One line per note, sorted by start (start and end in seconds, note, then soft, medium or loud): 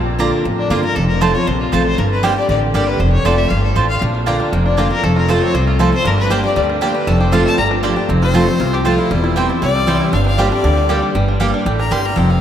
0.00 0.30 A#1 loud
0.00 0.43 A#2 medium
0.19 0.43 D3 medium
0.19 0.29 A#3 medium
0.19 0.44 A#3 medium
0.19 0.44 D4 loud
0.19 0.29 F4 medium
0.19 0.44 F4 loud
0.19 0.29 D5 medium
0.19 0.29 A#5 loud
0.45 0.67 A1 medium
0.45 0.94 F2 medium
0.58 0.72 D4 loud
0.70 0.92 G1 loud
0.70 0.83 D3 medium
0.70 0.80 A#3 medium
0.70 0.83 A#3 loud
0.70 0.84 D4 medium
0.70 0.80 F4 medium
0.70 0.82 F4 medium
0.70 0.82 F4 loud
0.70 0.80 D5 medium
0.70 0.80 A#5 medium
0.83 0.96 D4 soft
0.83 0.95 F4 medium
0.83 0.97 A#4 loud
0.95 1.32 F1 loud
0.95 1.45 F2 medium
0.95 1.08 A4 medium
1.08 1.23 A#4 medium
1.21 1.34 F3 medium
1.21 1.34 A3 loud
1.21 1.31 C4 loud
1.21 1.35 C4 medium
1.21 1.31 F4 loud
1.21 1.33 F4 medium
1.21 1.31 C5 loud
1.21 1.35 C5 medium
1.21 1.31 A5 loud
1.34 1.48 C4 medium
1.34 1.47 F4 medium
1.34 1.48 C#5 loud
1.47 1.69 A#1 loud
1.47 1.96 C3 medium
1.47 1.60 C5 medium
1.60 1.74 F4 medium
1.72 1.94 A1 medium
1.72 1.97 F3 medium
1.72 1.97 A3 medium
1.72 1.82 C4 medium
1.72 1.98 C4 medium
1.72 1.82 F4 medium
1.72 1.98 F4 medium
1.72 1.85 A4 medium
1.72 1.82 C5 loud
1.72 1.82 A5 loud
1.85 2.00 C5 loud
1.98 2.34 G1 loud
1.98 2.47 G2 medium
1.98 2.11 A#4 medium
2.11 2.25 B4 loud
2.23 2.36 G3 loud
2.23 2.32 A#3 medium
2.23 2.36 A#3 loud
2.23 2.36 D4 loud
2.23 2.33 G4 loud
2.23 2.35 G4 loud
2.23 2.36 C5 medium
2.23 2.33 D5 medium
2.23 2.33 G5 loud
2.36 2.49 D4 soft
2.36 2.48 G4 medium
2.36 2.48 D5 loud
2.49 2.71 A1 loud
2.49 2.97 D3 medium
2.49 2.57 D5 medium
2.74 2.96 G1 medium
2.74 2.99 G3 medium
2.74 2.83 A#3 medium
2.74 2.99 A#3 medium
2.74 2.99 D4 medium
2.74 2.84 G4 medium
2.74 3.00 G4 medium
2.74 2.84 D5 medium
2.74 2.89 D5 medium
2.74 2.84 G5 medium
2.87 3.01 B4 loud
3.00 3.18 F1 loud
3.00 3.48 F2 medium
3.00 3.12 C5 medium
3.12 3.26 C#5 loud
3.25 3.47 F1 medium
3.25 3.49 F3 medium
3.25 3.50 A3 loud
3.25 3.34 C4 loud
3.25 3.50 C4 loud
3.25 3.35 F4 loud
3.25 3.50 F4 loud
3.25 3.35 C5 loud
3.25 3.40 D5 medium
3.25 3.35 A5 medium
3.38 3.51 E5 loud
3.50 3.72 G1 medium
3.50 3.75 G2 medium
3.50 3.63 F5 medium
3.64 3.78 A4 medium
3.76 3.98 A1 medium
3.76 4.00 A2 medium
3.76 3.85 C4 medium
3.76 3.85 F4 medium
3.76 3.88 C5 medium
3.76 3.86 C5 loud
3.76 3.86 A5 medium
3.88 4.00 F5 loud
4.02 4.38 A#1 loud
4.02 4.50 A#2 medium
4.02 4.14 D4 medium
4.15 4.39 D4 soft
4.26 4.51 D3 medium
4.26 4.36 A#3 medium
4.26 4.52 A#3 medium
4.26 4.52 D4 loud
4.26 4.36 F4 loud
4.26 4.52 F4 medium
4.26 4.63 G4 medium
4.26 4.36 D5 medium
4.26 4.36 A#5 medium
4.40 4.65 D4 medium
4.53 4.89 F1 medium
4.53 5.01 F2 medium
4.53 4.89 A#3 medium
4.66 4.80 D4 medium
4.66 5.01 D4 medium
4.77 4.90 D3 medium
4.77 4.87 A#3 medium
4.77 4.91 A#3 medium
4.77 4.91 D4 medium
4.77 4.87 F4 medium
4.77 4.90 F4 medium
4.77 4.89 F4 medium
4.77 5.04 G4 medium
4.77 4.87 D5 medium
4.77 4.87 A#5 medium
4.90 5.03 A#3 medium
4.90 5.04 D4 soft
4.90 5.03 F4 medium
4.90 5.05 A#4 loud
5.03 5.40 F1 loud
5.03 5.52 F2 medium
5.03 5.28 A3 medium
5.03 5.16 A4 medium
5.16 5.52 F4 medium
5.16 5.31 A#4 medium
5.28 5.53 F3 medium
5.28 5.53 A3 medium
5.28 5.54 A3 loud
5.28 5.38 C4 medium
5.28 5.54 C4 loud
5.28 5.38 F4 medium
5.28 5.54 F4 loud
5.28 5.38 C5 medium
5.28 5.44 C5 medium
5.28 5.38 A5 medium
5.42 5.77 C4 medium
5.42 5.56 C#5 loud
5.54 5.91 C2 loud
5.54 6.03 C3 medium
5.54 5.78 A3 medium
5.54 5.67 C5 medium
5.67 6.03 F4 medium
5.67 5.81 F4 medium
5.79 5.92 F3 medium
5.79 6.05 A3 medium
5.79 5.92 A3 medium
5.79 5.89 C4 medium
5.79 5.93 C4 medium
5.79 5.89 F4 medium
5.79 5.91 F4 medium
5.79 5.93 A4 medium
5.79 5.89 C5 medium
5.79 5.89 A5 loud
5.92 6.05 C4 medium
5.92 6.06 C4 soft
5.92 6.05 F4 medium
5.92 6.08 C5 loud
6.05 6.41 G1 loud
6.05 6.54 G2 loud
6.05 6.17 D4 medium
6.05 6.19 A#4 loud
6.18 6.43 D4 medium
6.18 6.33 B4 medium
6.30 6.43 G3 medium
6.30 6.40 A#3 medium
6.30 6.43 A#3 loud
6.30 6.44 D4 loud
6.30 6.67 G4 medium
6.30 6.40 G4 loud
6.30 6.42 G4 loud
6.30 6.43 C5 medium
6.30 6.40 D5 loud
6.30 6.40 G5 loud
6.43 6.68 D4 medium
6.43 6.57 D4 medium
6.43 6.56 G4 medium
6.43 6.55 D5 loud
6.56 6.93 D2 medium
6.56 7.05 D3 medium
6.56 6.92 G3 medium
6.56 6.64 D5 medium
6.69 7.05 D4 medium
6.81 6.94 G3 medium
6.81 6.91 A#3 medium
6.81 6.94 A#3 medium
6.81 6.95 D4 medium
6.81 6.91 G4 medium
6.81 7.07 G4 medium
6.81 6.93 G4 medium
6.81 6.91 D5 medium
6.81 6.96 D5 medium
6.81 6.91 G5 loud
6.94 7.07 G3 medium
6.94 7.08 D4 soft
6.94 7.07 G4 medium
6.94 7.09 B4 medium
7.07 7.43 F1 medium
7.07 7.56 F2 loud
7.07 7.43 A3 medium
7.07 7.19 A5 medium
7.19 7.56 G4 medium
7.19 7.33 C5 medium
7.32 7.57 F3 medium
7.32 7.57 A3 loud
7.32 7.42 C4 medium
7.32 7.57 C4 medium
7.32 7.42 F4 medium
7.32 7.58 F4 medium
7.32 7.58 F4 loud
7.32 7.42 C5 loud
7.32 7.45 F5 medium
7.32 7.42 A5 loud
7.45 7.58 A3 medium
7.45 7.57 A5 loud
7.58 7.94 G1 medium
7.58 8.07 G2 medium
7.58 7.94 G3 medium
7.58 7.66 A#5 medium
7.71 7.96 D4 medium
7.83 7.96 F3 medium
7.83 7.92 A#3 medium
7.83 7.96 A#3 medium
7.83 7.97 D4 medium
7.83 7.93 F4 loud
7.83 8.09 G4 medium
7.83 7.95 G4 medium
7.83 7.93 D5 loud
7.83 7.93 G5 medium
7.96 8.09 D4 medium
7.96 8.09 D4 soft
7.96 8.08 G4 medium
8.09 8.45 F1 loud
8.09 8.58 F2 medium
8.09 8.45 C4 medium
8.22 8.58 F4 medium
8.22 8.75 C5 loud
8.34 8.47 F3 medium
8.34 8.47 A3 medium
8.34 8.71 A3 medium
8.34 8.43 C4 medium
8.34 8.47 C4 loud
8.34 8.44 F4 medium
8.34 8.46 F4 loud
8.34 8.44 C5 medium
8.34 8.44 A5 loud
8.47 8.83 C4 medium
8.47 8.60 C4 soft
8.47 8.59 F4 medium
8.60 8.96 C2 medium
8.60 9.08 C3 medium
8.60 8.96 F4 medium
8.73 9.09 G4 medium
8.73 8.85 G4 medium
8.85 9.09 F3 medium
8.85 9.10 A3 medium
8.85 8.94 C4 medium
8.85 9.10 C4 medium
8.85 9.11 C4 medium
8.85 8.95 F4 medium
8.85 9.01 F4 loud
8.85 9.10 F4 loud
8.85 8.95 C5 medium
8.85 8.95 A5 loud
8.98 9.48 E4 medium
8.98 9.11 F4 soft
9.11 9.47 E1 medium
9.11 9.59 E2 medium
9.11 9.75 G3 medium
9.24 9.59 E4 medium
9.36 9.49 E3 medium
9.36 9.49 G3 medium
9.36 9.45 C4 loud
9.36 9.49 C4 loud
9.36 9.46 E4 medium
9.36 9.48 E4 medium
9.36 10.76 G4 medium
9.36 9.46 C5 medium
9.36 9.46 G5 medium
9.49 9.85 C4 medium
9.49 9.62 C4 medium
9.49 9.61 E4 medium
9.62 9.98 C2 medium
9.62 10.10 C3 medium
9.62 9.98 E4 medium
9.62 10.12 D5 loud
9.75 10.38 G3 medium
9.87 10.11 E3 medium
9.87 10.12 G3 loud
9.87 9.96 C4 medium
9.87 10.13 C4 medium
9.87 10.12 C4 medium
9.87 9.97 E4 medium
9.87 10.12 E4 medium
9.87 9.97 C5 medium
9.87 9.97 G5 loud
10.01 10.13 E4 medium
10.13 10.49 G1 medium
10.13 10.61 G2 medium
10.13 10.25 D4 medium
10.13 10.25 F5 medium
10.26 10.51 D4 medium
10.26 10.41 F5 medium
10.38 10.51 G3 medium
10.38 10.74 G3 medium
10.38 10.47 A#3 medium
10.38 10.51 A#3 medium
10.38 10.51 D4 loud
10.38 10.48 G4 loud
10.38 10.50 G4 loud
10.38 10.51 C5 medium
10.38 10.48 D5 medium
10.38 10.48 G5 loud
10.51 10.87 D4 medium
10.51 10.64 D4 soft
10.51 10.63 G4 medium
10.51 11.01 D5 loud
10.64 11.00 D2 medium
10.64 11.12 D3 medium
10.64 11.00 D3 medium
10.77 11.01 G3 medium
10.89 11.13 G3 medium
10.89 10.98 A#3 medium
10.89 11.14 A#3 medium
10.89 11.14 D4 medium
10.89 10.98 G4 medium
10.89 11.26 G4 medium
10.89 11.14 G4 medium
10.89 10.99 D5 medium
10.89 10.99 G5 medium
11.03 11.14 G3 soft
11.15 11.51 G1 medium
11.15 11.63 G2 loud
11.15 11.40 G3 medium
11.28 11.53 D4 soft
11.40 11.64 G3 loud
11.40 11.77 G3 medium
11.40 11.49 A#3 medium
11.40 11.65 A#3 medium
11.40 11.65 D4 loud
11.40 11.49 G4 medium
11.40 11.65 G4 loud
11.40 11.50 D5 loud
11.40 11.50 G5 medium
11.54 11.78 D4 medium
11.66 11.87 A1 medium
11.66 11.90 A2 medium
11.66 12.02 G4 medium
11.79 12.04 D4 medium
11.79 11.93 A#5 loud
11.91 12.13 G1 medium
11.91 12.15 G2 medium
11.91 12.17 G3 medium
11.91 12.00 A#3 medium
11.91 12.01 G4 medium
11.91 12.01 D5 medium
11.91 12.01 G5 medium
11.91 12.07 C6 medium
12.05 12.17 D4 soft
12.05 12.19 A#5 loud
12.16 12.41 F1 medium
12.16 12.41 F2 medium
12.16 12.41 C4 medium
12.16 12.33 G5 medium
12.30 12.41 F4 medium
12.30 12.41 F5 medium